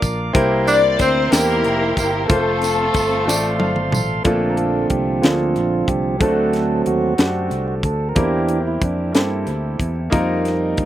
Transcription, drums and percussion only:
0.02 kick medium
0.02 closed hi-hat soft
0.02 tambourine soft
0.35 kick loud
0.35 closed hi-hat medium
0.67 closed hi-hat soft
0.67 tambourine medium
0.99 kick medium
0.99 closed hi-hat medium
0.99 tambourine soft
1.32 snare loud
1.32 closed hi-hat medium
1.32 tambourine medium
1.64 closed hi-hat soft
1.97 kick medium
1.97 closed hi-hat soft
1.97 tambourine soft
2.30 kick loud
2.30 closed hi-hat medium
2.62 snare soft
2.62 closed hi-hat soft
2.62 tambourine medium
2.94 kick medium
2.94 closed hi-hat medium
2.94 tambourine soft
3.28 snare medium
3.28 tambourine medium
3.60 high tom medium
3.76 mid tom medium
3.92 mid tom medium
3.92 tambourine medium
4.25 kick loud
4.25 closed hi-hat medium
4.57 closed hi-hat soft
4.90 kick medium
4.90 closed hi-hat medium
5.24 snare loud
5.24 closed hi-hat medium
5.56 closed hi-hat soft
5.88 kick medium
5.88 closed hi-hat soft
6.21 kick loud
6.21 closed hi-hat medium
6.53 snare soft
6.53 closed hi-hat soft
6.86 closed hi-hat soft
7.18 snare loud
7.18 closed hi-hat medium
7.51 closed hi-hat soft
7.83 kick medium
7.83 closed hi-hat soft
8.16 kick loud
8.16 closed hi-hat medium
8.49 closed hi-hat soft
8.82 kick medium
8.82 closed hi-hat medium
9.15 snare loud
9.15 closed hi-hat medium
9.47 closed hi-hat soft
9.80 kick medium
9.80 closed hi-hat medium
10.12 kick loud
10.12 closed hi-hat medium
10.45 snare soft
10.45 closed hi-hat soft
10.77 kick medium
10.77 closed hi-hat medium

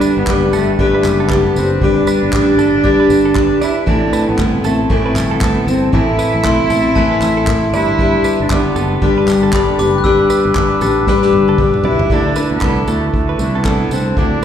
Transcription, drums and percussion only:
0.01 tambourine medium
0.27 kick loud
0.27 clap loud
0.53 tambourine medium
0.79 kick loud
1.04 clap medium
1.04 tambourine medium
1.30 kick loud
1.30 clap loud
1.56 tambourine medium
1.81 kick loud
2.07 tambourine medium
2.33 kick loud
2.33 clap loud
2.59 tambourine medium
2.84 kick loud
3.10 tambourine medium
3.35 kick loud
3.35 clap loud
3.62 tambourine medium
3.87 kick loud
4.13 tambourine medium
4.39 kick loud
4.39 clap loud
4.64 tambourine medium
4.90 kick loud
5.16 clap loud
5.16 tambourine medium
5.41 kick loud
5.41 clap loud
5.68 tambourine medium
5.93 kick loud
6.19 tambourine medium
6.44 kick loud
6.44 clap loud
6.70 tambourine medium
6.96 kick loud
7.21 clap medium
7.21 tambourine medium
7.47 kick loud
7.47 clap loud
7.73 tambourine medium
7.99 kick loud
8.24 tambourine medium
8.50 kick loud
8.50 clap loud
8.76 tambourine medium
9.02 kick loud
9.28 clap loud
9.28 tambourine medium
9.53 kick loud
9.53 clap loud
9.79 tambourine medium
10.04 kick loud
10.30 tambourine medium
10.55 kick loud
10.55 clap loud
10.81 tambourine medium
11.07 kick loud
11.07 snare medium
11.22 snare medium
11.33 high tom medium
11.48 high tom medium
11.58 kick loud
11.58 mid tom medium
11.74 mid tom medium
11.84 floor tom medium
11.99 floor tom medium
12.10 kick loud
12.36 tambourine medium
12.61 kick loud
12.61 clap loud
12.88 tambourine medium
13.14 kick loud
13.39 tambourine medium
13.65 kick loud
13.65 clap loud
13.91 tambourine medium
14.17 kick loud

